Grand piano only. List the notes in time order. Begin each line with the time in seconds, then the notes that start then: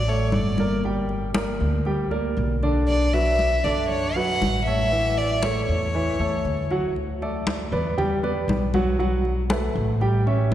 0.08 A3 A4 D5
0.59 A#3 A#4 D5
0.85 G3 G4 G5
1.35 A#3 A#4 D5
1.86 G3 G4 G5
2.11 A#3 A#4 D5
2.63 D3 D4 D5
3.13 F#3 F#4 B4
3.65 D3 D4 D5
4.16 F#3 F#4 B4
4.67 A3 A4 C#5
4.92 E3 E4 E5
5.44 A3 A4 C#5
5.95 E3 E4 E5
6.20 A3 A4 C#5
6.71 F#3 F#4 F#5
7.22 A3 A4 D5
7.72 B3 B4 D5
7.98 G3 G4 G5
8.23 B3 B4 D5
8.74 F#3 F#4 F#5
8.99 F#3 F#4 F#5
9.50 A3 A4 B4
10.01 G3 G4 G5
10.26 C#4 C#5 E5